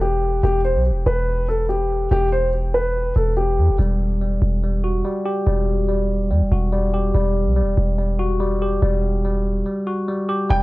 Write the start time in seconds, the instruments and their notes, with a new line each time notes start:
Already playing: 808-style bass E1
0.01 grand piano G4
0.43 808-style bass E1, grand piano G4
0.64 grand piano C5
0.75 808-style bass B1
0.91 808-style bass E1
1.06 808-style bass E1, grand piano B4
1.48 grand piano A4
1.69 grand piano G4
2.11 808-style bass E1, grand piano G4
2.32 grand piano C5
2.74 grand piano B4
3.16 808-style bass E1, grand piano A4
3.37 grand piano G4
3.58 808-style bass E2
3.69 808-style bass E1
3.78 808-style bass E1, tine electric piano G3
4.21 tine electric piano G3
4.42 808-style bass E1
4.63 tine electric piano G3
4.84 tine electric piano F#4
5.05 tine electric piano G3
5.25 tine electric piano G4
5.46 808-style bass E1, tine electric piano G3
5.88 tine electric piano G3
6.31 808-style bass E2, tine electric piano G3
6.42 808-style bass E1
6.52 808-style bass E1, tine electric piano F#4
6.72 tine electric piano G3
6.94 tine electric piano G4
7.15 808-style bass E1, tine electric piano G3
7.47 808-style bass B1
7.56 tine electric piano G3
7.62 808-style bass E1
7.77 808-style bass E1
7.98 tine electric piano G3
8.19 tine electric piano F#4
8.40 tine electric piano G3
8.62 tine electric piano G4
8.82 808-style bass E1, tine electric piano G3
9.24 tine electric piano G3
9.66 tine electric piano G3
9.87 tine electric piano F#4
10.08 tine electric piano G3
10.29 tine electric piano G4
10.50 808-style bass E1, tine electric piano G3, grand piano G5